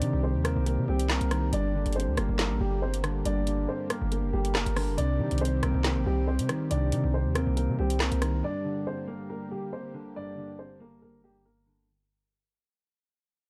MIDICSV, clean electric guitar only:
0, 0, Header, 1, 2, 480
1, 0, Start_track
1, 0, Key_signature, -2, "minor"
1, 0, Tempo, 431655
1, 1699, Time_signature, 4, 2, 24, 8
1, 15010, End_track
2, 0, Start_track
2, 0, Title_t, "Clean electric guitar"
2, 0, Program_c, 0, 27
2, 0, Note_on_c, 0, 48, 91
2, 0, Note_on_c, 0, 60, 73
2, 19, Note_on_c, 0, 51, 75
2, 259, Note_off_c, 0, 60, 0
2, 500, Note_on_c, 0, 60, 94
2, 972, Note_off_c, 0, 60, 0
2, 974, Note_off_c, 0, 48, 0
2, 985, Note_on_c, 0, 60, 81
2, 1219, Note_off_c, 0, 51, 0
2, 1460, Note_on_c, 0, 51, 75
2, 1694, Note_on_c, 0, 43, 89
2, 1699, Note_off_c, 0, 51, 0
2, 1702, Note_off_c, 0, 60, 0
2, 1943, Note_on_c, 0, 50, 83
2, 2418, Note_on_c, 0, 58, 91
2, 2875, Note_off_c, 0, 58, 0
2, 2889, Note_on_c, 0, 58, 77
2, 2896, Note_off_c, 0, 43, 0
2, 3141, Note_off_c, 0, 50, 0
2, 3377, Note_on_c, 0, 50, 77
2, 3620, Note_on_c, 0, 43, 88
2, 3839, Note_off_c, 0, 50, 0
2, 3852, Note_on_c, 0, 50, 77
2, 4094, Note_off_c, 0, 58, 0
2, 4335, Note_on_c, 0, 58, 99
2, 4807, Note_off_c, 0, 58, 0
2, 4819, Note_off_c, 0, 43, 0
2, 4820, Note_on_c, 0, 58, 83
2, 5055, Note_off_c, 0, 50, 0
2, 5296, Note_on_c, 0, 50, 73
2, 5531, Note_on_c, 0, 48, 93
2, 5537, Note_off_c, 0, 50, 0
2, 5539, Note_off_c, 0, 58, 0
2, 5769, Note_on_c, 0, 51, 72
2, 6261, Note_on_c, 0, 60, 93
2, 6725, Note_off_c, 0, 60, 0
2, 6735, Note_off_c, 0, 48, 0
2, 6738, Note_on_c, 0, 60, 74
2, 6974, Note_off_c, 0, 51, 0
2, 7219, Note_on_c, 0, 51, 78
2, 7449, Note_on_c, 0, 48, 94
2, 7686, Note_off_c, 0, 51, 0
2, 7699, Note_on_c, 0, 51, 77
2, 7939, Note_off_c, 0, 60, 0
2, 8180, Note_on_c, 0, 60, 96
2, 8652, Note_off_c, 0, 60, 0
2, 8654, Note_off_c, 0, 48, 0
2, 8665, Note_on_c, 0, 60, 78
2, 8899, Note_off_c, 0, 51, 0
2, 9140, Note_on_c, 0, 51, 73
2, 9374, Note_on_c, 0, 43, 90
2, 9379, Note_off_c, 0, 51, 0
2, 9382, Note_off_c, 0, 60, 0
2, 9618, Note_on_c, 0, 50, 81
2, 10093, Note_on_c, 0, 58, 99
2, 10565, Note_off_c, 0, 58, 0
2, 10577, Note_off_c, 0, 43, 0
2, 10579, Note_on_c, 0, 58, 75
2, 10819, Note_off_c, 0, 50, 0
2, 11054, Note_on_c, 0, 50, 73
2, 11299, Note_on_c, 0, 43, 87
2, 11523, Note_off_c, 0, 50, 0
2, 11537, Note_on_c, 0, 50, 73
2, 11779, Note_off_c, 0, 58, 0
2, 12012, Note_on_c, 0, 58, 96
2, 12485, Note_off_c, 0, 58, 0
2, 12498, Note_on_c, 0, 58, 77
2, 12499, Note_off_c, 0, 43, 0
2, 12738, Note_off_c, 0, 50, 0
2, 12971, Note_on_c, 0, 50, 75
2, 13215, Note_off_c, 0, 50, 0
2, 13218, Note_off_c, 0, 58, 0
2, 15010, End_track
0, 0, End_of_file